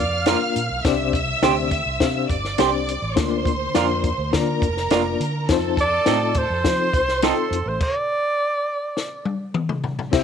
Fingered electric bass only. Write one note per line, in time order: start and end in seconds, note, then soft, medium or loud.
0.00 0.34 F2 medium
0.56 0.68 A#2 medium
0.70 0.82 B1 medium
0.85 1.33 C2 loud
1.42 1.79 D2 medium
1.86 1.98 C2 medium
2.01 2.25 C3 loud
2.29 2.54 G1 medium
2.59 2.95 C2 medium
3.02 3.14 A1 medium
3.17 3.66 D2 loud
3.75 4.12 F2 medium
4.18 4.30 D2 medium
4.33 4.57 D3 medium
4.62 4.86 F1 medium
4.90 5.15 F1 medium
5.20 5.51 D3 loud
5.49 5.98 F2 loud
6.07 6.43 A2 medium
6.50 6.62 F2 medium
6.64 6.89 F3 loud
6.94 7.30 C2 medium
7.51 7.63 F2 medium
7.66 7.78 A1 loud
10.13 10.23 C2 loud